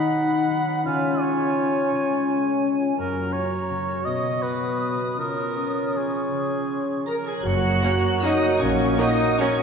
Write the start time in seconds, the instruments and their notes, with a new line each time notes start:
Already playing: harp D#3 F#3 B3 D#4 B4, french horn section D#4, clarinet D#4, oboe F#5, flute section B5
0.13 harp B4
0.32 harp D#4
0.50 harp F#3
0.68 harp B4
0.84 harp C#3, french horn section C#4, clarinet F4, oboe F5, flute section G#5
1.03 harp G#3
1.21 harp F4, oboe C#5
1.39 harp G#3
1.57 harp C#4
1.75 harp F4
1.92 harp C#3
2.09 harp G#3
2.27 harp F4
2.45 harp G#3
2.63 harp C#4
2.82 harp F4
2.97 harp F#2, french horn section F#3, clarinet F#4, oboe A#4, flute section A#5
3.15 harp A#3
3.32 harp F#4, oboe C#5
3.52 harp A#3
3.70 harp C#3
3.88 harp F#4
4.04 harp B2, french horn section B3, oboe D#5, flute section D#6
4.23 harp F#3
4.42 harp F#4, oboe B4
4.62 harp F#3
4.80 harp B3
4.99 harp F#4
5.17 harp C#3, french horn section C#4, clarinet F4, oboe A#4
5.36 harp C#4
5.55 harp C#5
5.74 harp C#4
5.95 harp F3, oboe G#4, flute section C#6
6.13 harp C#5
6.31 harp C#3
6.49 harp C#4
6.68 harp C#5
6.88 harp C#4
7.07 harp F3, trumpet section A#4, french horn section A#4, flute section A#5, violin section A#6
7.25 french horn section G#4, trumpet section G#4, harp C#5, flute section G#5, violin section G#6
7.43 double bass section F#1, cello section F#2, harp F#2, trombone section F#3 A#3, clarinet F#4, french horn section F#4, trumpet section F#4, flute section F#5, oboe A#5, violin section F#6
7.64 harp F#3
7.82 viola section A#3 C#4, violin section F#4 C#5, harp A#4
8.03 harp F#4
8.22 viola section A#3 C#4, french horn section D#4, trumpet section D#4, violin section F#4 C#5 D#6, harp C#5, flute section D#5
8.42 harp F#4
8.60 double bass section A#1, cello section A#2, harp A#2, french horn section C#4, trumpet section C#4, flute section C#5, oboe F#5, violin section C#6
8.79 harp F#3
8.98 viola section A#3 C#4, french horn section D#4, trumpet section D#4, violin section F#4 A#4 D#6, harp A#4, flute section D#5
9.19 harp F#4
9.38 viola section A#3 C#4, french horn section C#4, trumpet section C#4, violin section F#4 A#4 C#6, flute section C#5, harp F#5
9.59 harp F#4